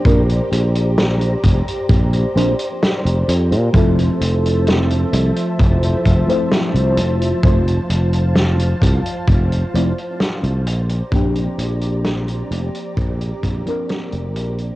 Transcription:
Already playing: G4 C5 D5 A#5
0.05 A#1 F3 A#3 C4 D4 A#4, kick, closed hi-hat
0.29 closed hi-hat
0.52 A#1, closed hi-hat
0.75 closed hi-hat
0.98 snare, closed hi-hat
1.21 closed hi-hat
1.44 F1, kick, closed hi-hat
1.68 closed hi-hat
1.89 A#1, kick, closed hi-hat
2.13 closed hi-hat
2.35 A#1 F3 A#3 C4 D4 C5, closed hi-hat
2.59 closed hi-hat
2.83 snare, closed hi-hat
3.05 F1, closed hi-hat
3.28 F2, closed hi-hat
3.52 A#2, closed hi-hat
3.73 F1 F3 A3 C4 E4 A4 E5 A5, kick, closed hi-hat
3.99 closed hi-hat
4.21 F1, closed hi-hat
4.46 closed hi-hat
4.67 snare, closed hi-hat
4.90 closed hi-hat
5.13 C2, closed hi-hat
5.36 closed hi-hat
5.59 F1, kick, closed hi-hat
5.83 closed hi-hat
6.05 F1, kick, closed hi-hat
6.27 F3 A3 C4 E4 C5, closed hi-hat
6.51 snare, closed hi-hat
6.74 C2, closed hi-hat
6.97 F1, closed hi-hat
7.22 closed hi-hat
7.43 F1 F3 A3 C4 E4 C5 F5, kick, closed hi-hat
7.68 closed hi-hat
7.90 F1, closed hi-hat
8.13 closed hi-hat
8.36 snare, closed hi-hat
8.60 closed hi-hat
8.82 C2, kick, closed hi-hat
9.06 closed hi-hat
9.28 F1, kick, closed hi-hat
9.52 closed hi-hat
9.74 F1 F3 A3 C4 E4 D5, closed hi-hat
9.98 closed hi-hat
10.20 snare, closed hi-hat
10.43 C2, closed hi-hat
10.66 A#1 G4 D5 A#5, closed hi-hat
10.89 closed hi-hat
11.12 A#1 F3 A#3 C4 D4 G4, kick, closed hi-hat
11.36 closed hi-hat
11.58 A#1, closed hi-hat
11.82 closed hi-hat
12.05 snare, closed hi-hat
12.28 closed hi-hat
12.51 F1, closed hi-hat
12.75 closed hi-hat
12.97 A#1, kick, closed hi-hat
13.21 closed hi-hat
13.43 A#1, kick, closed hi-hat
13.65 F3 A#3 C4 D4 A#4, closed hi-hat
13.89 snare, closed hi-hat
14.12 F1, closed hi-hat
14.36 A#1, closed hi-hat
14.59 closed hi-hat

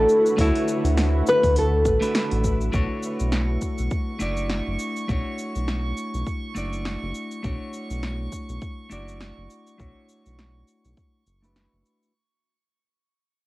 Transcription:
Already playing: D3 A3 D4 E4 F#4 A4 B4 D5
0.09 cabasa
0.26 cabasa
0.37 D2 A3 D4 E4 F#4 C#5, kick, open hi-hat, cabasa
0.56 open hi-hat
0.68 cabasa
0.84 D2, open hi-hat, cabasa
0.98 snare, open hi-hat, cabasa
1.27 B4, cabasa
1.43 D2, kick, open hi-hat, cabasa
1.56 A4, open hi-hat, cabasa
1.85 A1, kick, cabasa
2.01 A3 D4 E4 F#4 B4, open hi-hat, cabasa
2.15 snare, open hi-hat, cabasa
2.31 A1, open hi-hat
2.44 kick, cabasa
2.61 cabasa
2.72 B1 A3 D4 E4 F#4 C#5 C#6, kick, cabasa
3.03 cabasa
3.20 B1, cabasa
3.32 snare, cabasa
3.62 kick, cabasa
3.78 B1, cabasa
3.91 kick, cabasa
4.19 F#1 A3 D4 E4 F#4 D5, cabasa
4.37 cabasa
4.50 snare, cabasa
4.67 F#1
4.79 cabasa
4.97 cabasa
5.08 B1 A3 D4 E4 F#4 C#5, kick, cabasa
5.38 cabasa
5.56 B1, cabasa
5.68 snare, cabasa
5.97 cabasa
6.14 B1, cabasa
6.27 kick, cabasa
6.55 F#1 A3 D4 E4 F#4 D5, cabasa
6.73 cabasa
6.85 snare, cabasa
7.03 F#1
7.15 cabasa
7.31 cabasa
7.43 B1 A3 D4 E4 F#4 C#5, kick, cabasa
7.73 cabasa
7.90 B1, cabasa
8.03 snare, cabasa
8.32 kick, cabasa
8.49 B1, cabasa
8.62 kick, cabasa
8.89 F#1 A3 D4 E4 F#4 D5, cabasa
9.08 cabasa
9.21 snare, cabasa
9.38 F#1
9.50 cabasa
9.67 cabasa
9.78 B1 A3 D4 E4 F#4 C#5, kick, cabasa
10.09 cabasa
10.26 B1, cabasa
10.39 snare, cabasa
10.68 cabasa
10.85 B1, cabasa
10.97 kick, cabasa
11.26 F#1, cabasa
11.42 A3 D4 E4 F#4 B4, cabasa
11.56 snare, cabasa
11.73 F#1
11.86 cabasa
12.03 cabasa

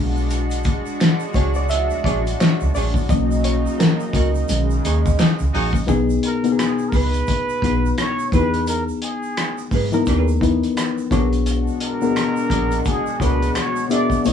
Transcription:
Already playing: B1 F#3 G#3 D4 F#4
0.17 shaker
0.30 closed hi-hat, shaker
0.51 closed hi-hat, shaker
0.63 kick, closed hi-hat, shaker
0.86 shaker
1.00 finger snap, snare, closed hi-hat, shaker
1.20 shaker
1.33 C#2 D4 G#4 C#5, kick, closed hi-hat, shaker
1.54 D5, shaker
1.69 E5, closed hi-hat, shaker
1.90 shaker
2.04 A#1 D4 G#4 C#5 D5, kick, closed hi-hat
2.27 closed hi-hat, shaker
2.40 C#5, finger snap, snare, closed hi-hat, shaker
2.60 C#2, shaker
2.75 A#1 D4 G#4 C#5 D5, open hi-hat, shaker
2.94 kick, shaker
3.08 B1 C#3 F#3 A#3 C#4 D#4 D#5, kick, closed hi-hat, shaker
3.31 shaker
3.44 C#5, closed hi-hat, shaker
3.66 shaker
3.79 A#4, finger snap, snare, closed hi-hat, shaker
4.00 shaker
4.13 C#2 F#4 A#4 C#5, kick, closed hi-hat, shaker
4.35 shaker
4.48 B1 C#3 D#3 G#3 C#4, closed hi-hat, shaker
4.70 shaker
4.85 D#2 D#4 G#4 C#5, closed hi-hat, shaker
5.06 kick, shaker
5.18 C#4 D#4 F#4, finger snap, snare, closed hi-hat, shaker
5.39 C#2, shaker
5.53 A#1 C#4 D#4 F#4 G#4 C#5, open hi-hat
5.73 kick, shaker
5.87 B1 B2 B3 D#4 G#4, kick, closed hi-hat, shaker
6.10 shaker
6.23 A#4, closed hi-hat
6.43 B2 B3 D#4 F#4, closed hi-hat, shaker
6.52 G#4 A#4
6.59 G#4, finger snap, cross-stick, closed hi-hat, shaker
6.79 shaker
6.89 C#2 A#4, kick, shaker
6.94 D#4 G#4 B4, open hi-hat
7.13 closed hi-hat, shaker
7.27 kick, closed hi-hat, shaker
7.49 shaker
7.62 B1 B2 B3 D#4 F#4 G#4 B4, kick, closed hi-hat, shaker
7.86 shaker
7.98 C#5, finger snap, cross-stick, closed hi-hat, shaker
8.19 shaker
8.32 E2 E3 B3 D#4 G4 G#4 B4, kick, closed hi-hat, shaker
8.41 G#4
8.54 closed hi-hat, shaker
8.67 A#4, closed hi-hat, shaker
8.89 shaker
9.02 G#4, closed hi-hat
9.23 shaker
9.37 finger snap, cross-stick, closed hi-hat, shaker
9.58 shaker
9.71 G#2 D#4 G#4 B4, kick, open hi-hat, shaker
9.92 E3 B3 D#4 A#4, closed hi-hat, shaker
10.06 D#2 D#4 G#4 B4, kick, closed hi-hat, shaker
10.28 shaker
10.41 E2 E3 B3 D#4 B4, kick, closed hi-hat, shaker
10.63 closed hi-hat, shaker
10.77 finger snap, cross-stick, closed hi-hat, shaker
10.98 shaker
11.11 B1 B2 B3 D4 F#4 G#4 A#4 C#5, kick, closed hi-hat, shaker
11.33 closed hi-hat, shaker
11.45 G#3 D4 F#4, closed hi-hat, shaker
11.68 shaker
11.80 A#4, closed hi-hat
12.01 B2 B3 D4 F#4 G#4 A#4, shaker
12.16 finger snap, cross-stick, closed hi-hat, shaker
12.36 shaker
12.50 A#1 D4 G#4 A#4, kick, closed hi-hat, shaker
12.71 closed hi-hat, shaker
12.85 G#4, kick, closed hi-hat, shaker
13.07 shaker
13.20 C#2 B2 B3 D4 F#4 G#4 A#4 B4 C#5, kick, closed hi-hat, shaker
13.42 closed hi-hat, shaker
13.55 C#5, finger snap, cross-stick, closed hi-hat, shaker
13.76 shaker
13.89 B2 B3 D4 F#4 G#4 A#4 D5 E5, closed hi-hat, shaker
14.10 kick, closed hi-hat, shaker
14.25 B1 B2 C#3 F#3 A#3 D#4 E4 C#5 D#5, closed hi-hat, shaker

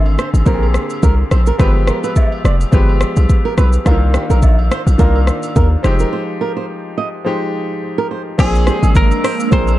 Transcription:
Already playing: G#1 D3 A#3 C4 G#4
0.06 high agogo
0.18 C5, cross-stick, shaker
0.34 G#1, high agogo, shaker
0.45 A#1 D3 A#3 C4 G4 A#4, kick, shaker
0.54 G#4
0.63 high agogo
0.74 cross-stick, shaker
0.90 high agogo, shaker
1.03 C2 A#4, kick, shaker
1.31 A#1 C5, cross-stick, high agogo, shaker
1.46 A#4, shaker
1.58 G1 F3 G#3 B3 G4 B4, kick, cross-stick, high agogo, shaker
1.87 A#4, cross-stick, shaker
2.04 B4, high agogo, shaker
2.16 kick, low woodblock, shaker
2.32 high agogo
2.45 F1 D5, cross-stick, shaker
2.61 high agogo, shaker
2.71 G1 F3 G#3 B3 G4 B4, kick, shaker
2.89 high agogo
3.01 cross-stick, shaker
3.16 B1, high agogo, shaker
3.29 kick, shaker
3.45 A#4
3.58 B1 B4, cross-stick, high agogo, shaker
3.73 shaker
3.85 C2 D3 A#3 D4 F4 A#4, kick, cross-stick, high agogo, shaker
3.91 D#3
4.14 G4, cross-stick, shaker
4.30 A#1 A#4, high agogo, shaker
4.42 kick, low woodblock, shaker
4.59 high agogo
4.71 C5, cross-stick, shaker
4.87 A#1, high agogo, shaker
4.98 C2 D#3 A#3 D4 F4 A#4, kick, shaker
5.16 high agogo
5.27 cross-stick, shaker
5.43 high agogo, shaker
5.56 D#2 A#4, kick, shaker
5.83 F1 F3 G#3 D#4 G4 C5, cross-stick, high agogo, shaker
5.99 A#4, shaker
6.13 C5
6.41 A#4
6.57 C5
6.98 D#5
7.25 F3 G#3 D#4 G4 C5
7.98 A#4
8.11 C5
8.38 A#1 F3 G#3 A#3 C4 D4 G#4, kick, cross-stick, crash, high agogo, shaker
8.55 shaker
8.67 G4, cross-stick, shaker
8.83 G#1 G#4, high agogo, shaker
8.95 A#4, kick, shaker
9.11 high agogo, shaker
9.24 C5, cross-stick, open hi-hat, shaker
9.40 high agogo, shaker
9.51 A#1 F3 A#3 C4 D4 G#4 A#4 C5, kick, shaker
9.68 high agogo, shaker

